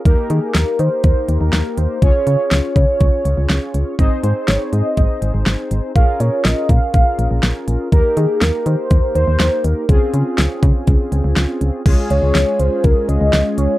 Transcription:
<<
  \new Staff \with { instrumentName = "Soft synth lead" } { \time 4/4 \key des \lydian \tempo 4 = 122 bes'8 aes'8 bes'8 c''8 c''8. bes'8. c''8 | des''4. des''4. r4 | ees''8 c''8 des''8 ees''8 ees''8. r4 r16 | f''8 des''8 ees''8 f''8 f''8. r4 r16 |
bes'8 aes'8 bes'8 c''4 c''4 bes'8 | aes'2. r4 | r8 des''4 c''8 bes'8 ees''4 des''8 | }
  \new Staff \with { instrumentName = "Analog polysynth" } { \time 4/4 \key des \lydian <bes ees' g' bes'>1 | <des' f' aes' des''>1 | <c' ees' aes' c''>1 | <des' f' aes' bes'>1 |
<bes ees' g' bes'>1 | <c' des' f' aes'>1 | <aes des' f' aes'>1 | }
  \new Staff \with { instrumentName = "FM bass" } { \clef bass \time 4/4 \key des \lydian ees,16 r16 ees16 r16 ees,16 r16 ees16 r16 ees,16 r16 ees,16 ees,16 ees,16 r16 ees,16 r16 | des,16 r16 des16 r16 des,16 r16 des16 r16 des,16 r16 des,16 des,16 des,16 r16 des,16 r16 | aes,,16 r16 aes,16 r16 aes,,16 r16 aes,16 r16 aes,,16 r16 aes,,16 aes,,16 aes,,16 r16 aes,,16 r16 | bes,,16 r16 bes,16 r16 bes,,16 r16 bes,16 r16 bes,,16 r16 bes,,16 bes,,16 bes,,16 r16 bes,,16 r16 |
ees,16 r16 ees16 r16 ees,16 r16 ees16 r16 ees,16 r16 ees,16 ees,16 ees,16 r16 ees,16 r16 | des,16 r16 des16 r16 des,16 r16 des16 r16 des,16 r16 des,16 des,16 des,16 r16 des,16 r16 | des,16 r16 des,16 des,16 des,16 r16 des,16 r16 des,16 r16 des,16 des,16 des,16 r16 des,16 r16 | }
  \new DrumStaff \with { instrumentName = "Drums" } \drummode { \time 4/4 <hh bd>8 hh8 <hh sn>8 hh8 <hh bd>8 hh8 <hh sn>8 hh8 | <hh bd>8 hh8 <hh sn>8 <hh bd>8 <hh bd>8 hh8 <hh sn>8 hh8 | <hh bd>8 hh8 <hh sn>8 hh8 <hh bd>8 hh8 <hh sn>8 hh8 | <hh bd>8 hh8 <hh sn>8 <hh bd>8 <hh bd>8 hh8 <hh sn>8 hh8 |
<hh bd>8 hh8 <hh sn>8 hh8 <hh bd>8 hh8 <hh sn>8 hh8 | <hh bd>8 hh8 <hh sn>8 <hh bd>8 <hh bd>8 hh8 <hh sn>8 hh8 | <cymc hh bd>8 hh8 <hh sn>8 hh8 <hh bd>8 hh8 <hh sn>8 hh8 | }
>>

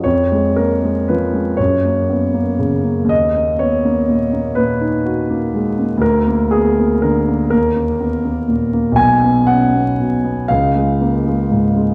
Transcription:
<<
  \new Staff \with { instrumentName = "Grand piano" } { \time 6/8 \key dis \minor \tempo 4. = 40 cis''8 bes'8 b'8 cis''4. | dis''8 cis''4 b'4. | ais'8 gis'8 ais'8 ais'4. | gis''8 fis''4 eis''4. | }
  \new Staff \with { instrumentName = "Grand piano" } { \time 6/8 \key dis \minor f,16 aes16 bes16 aes16 f16 aes16 fis,16 ais16 b16 ais16 cis16 ais16 | dis,16 ais16 b16 ais16 ais,16 ais16 ais,16 dis'16 fis'16 ais16 gis16 ais16 | d,16 ais16 b16 ais16 d16 ais16 dis,16 ais16 b16 ais16 ais,16 ais16 | b,,16 b16 cis'16 b16 b,16 b16 cis,16 gis16 ais16 gis16 gis,16 gis16 | }
>>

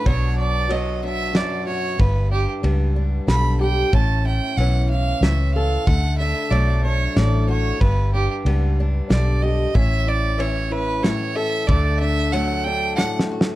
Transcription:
<<
  \new Staff \with { instrumentName = "Fiddle" } { \time 3/4 \key d \major \tempo 4 = 93 cis''8 d''8 ees''8 e''8 d''8 cis''8 | b'8 g'8 r4 b''8 g''8 | a''8 g''8 fis''8 f''8 e''8 f''8 | fis''8 e''8 d''8 cis''8 d''8 cis''8 |
b'8 g'8 r4 d''8 ees''8 | e''8 d''8 cis''8 b'8 cis''8 e''8 | d''8 e''8 fis''8 g''8 fis''8 r8 | }
  \new Staff \with { instrumentName = "Steel-string acoustic guitar" } { \time 3/4 \key d \major << { <fis b d' fis'>4 b8 d'4 fis'8 | b8 d'8 b8 d'4 g'8 | cis'8 e'8 cis'4. a'8 | a8 d'8 a8 d'4 fis'8 |
b8 d'8 b8 d'4 g'8 | cis'8 e'8 cis'8 e'4 a'8 | a8 d'8 a8 d'4 fis'8 | } \\ { b,4 fis4 fis,4 | g,4 g4 d4 | a,4 e4 a,4 | d4 fis4 a,4 |
g,4 g4 d4 | a,4 e4 a,4 | d4 fis4 a,4 | } >> }
  \new Staff \with { instrumentName = "Fingered electric bass" } { \clef bass \time 3/4 \key d \major b,,2. | g,,4 cis,4 b,,4 | a,,4 b,,4 cis,4 | d,4 b,,4 a,,4 |
g,,4 cis,4 b,,4 | a,,2. | d,2. | }
  \new DrumStaff \with { instrumentName = "Drums" } \drummode { \time 3/4 <bd cymr>4 cymr4 <cymr sn>4 | <bd cymr>4 cymr4 <cymr sn>4 | <bd cymr>4 cymr4 <cymr sn>4 | <bd cymr>4 cymr4 <cymr sn>4 |
<bd cymr>4 cymr4 <cymr sn>4 | <bd cymr>4 cymr4 <cymr sn>4 | <bd cymr>4 cymr4 \tuplet 3/2 { sn8 sn8 sn8 } | }
>>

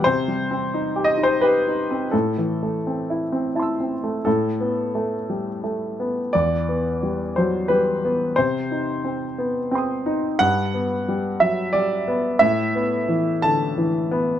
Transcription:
<<
  \new Staff \with { instrumentName = "Grand piano" } { \time 3/4 \key a \dorian \tempo 4 = 88 << { r2. | r2 <a'' c''' e'''>4 | r2. | r2. |
r2 <g'' c''' ees'''>4 | r2. | r2. | } \\ { c''4. ees''16 c''16 b'4 | a'2~ a'8 r8 | a'2. | d''4. c''8 b'4 |
c''2. | fis''4. e''8 d''4 | e''4. a''4. | } >> }
  \new Staff \with { instrumentName = "Grand piano" } { \time 3/4 \key a \dorian \tuplet 3/2 { c8 g8 c'8 ees'8 g'8 ees'8 g'8 ees'8 c'8 } | \tuplet 3/2 { a,8 e8 a8 c'8 e'8 c'8 e'8 c'8 a8 } | a,8 b8 a8 g8 a8 b8 | e,8 b8 g8 fis8 g8 b8 |
c8 ees'8 c'8 b8 c'8 ees'8 | g,8 b8 g8 fis8 g8 b8 | a,8 b8 e8 d8 e8 b8 | }
>>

